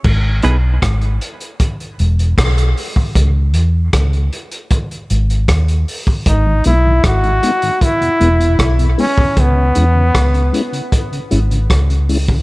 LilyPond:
<<
  \new Staff \with { instrumentName = "Clean electric guitar" } { \time 4/4 \key cis \minor \tempo 4 = 77 r8 <b dis' gis' b'>8 r2. | r1 | r1 | r1 | }
  \new Staff \with { instrumentName = "Trombone" } { \time 4/4 \key cis \minor r1 | r1 | dis'8 e'8 fis'4 e'4 r8 cis'8 | b2 r2 | }
  \new Staff \with { instrumentName = "Tonewheel organ" } { \time 4/4 \key cis \minor r1 | r1 | r8 <gis b dis'>8 r8 <gis b dis'>8 r8 <gis b e'>8 r8 <gis b e'>8 | r8 <gis cis' e'>8 r8 <gis cis' e'>8 r8 <gis cis' e'>8 r8 <gis cis' e'>8 | }
  \new Staff \with { instrumentName = "Tonewheel organ" } { \clef bass \time 4/4 \key cis \minor r1 | r1 | r16 <gis, dis>16 r16 <gis, dis>16 r16 <gis, dis>16 r16 <gis, dis>16 r16 <e, b,>16 r16 <e, b,>16 r16 <e, b,>16 r16 <e, b,>16 | r16 cis16 r16 cis16 r16 cis16 r16 cis16 r16 cis16 r16 cis16 r16 cis16 r16 cis16 | }
  \new Staff \with { instrumentName = "Fingered electric bass" } { \clef bass \time 4/4 \key cis \minor gis,,8 b,,8 gis,,8 r4 e,,8 b,,8 r8 | cis,8 e,8 cis,8 r4 gis,,8 dis,8 r8 | gis,,8 b,,8 gis,,8 r4 e,,8 b,,8 r8 | cis,8 e,8 cis,8 r4 gis,,8 cis,4 | }
  \new DrumStaff \with { instrumentName = "Drums" } \drummode { \time 4/4 <cymc bd>8 hh8 <hh bd ss>16 hh16 hh16 hh16 <hh bd>16 hh16 hh16 hh16 <hh bd ss>16 hh16 hho16 bd16 | <hh bd>8 hh8 <hh bd ss>16 hh16 hh16 hh16 <hh bd>16 hh16 hh16 hh16 <hh bd ss>16 hh16 hho16 bd16 | <hh bd>8 hh8 <hh bd ss>16 hh16 hh16 hh16 <hh bd>16 hh16 hh16 hh16 <hh bd ss>16 hh16 hho16 bd16 | <hh bd>8 hh8 <hh bd ss>16 hh16 hh16 hh16 <hh bd>16 hh16 hh16 hh16 <hh bd ss>16 hh16 hho16 bd16 | }
>>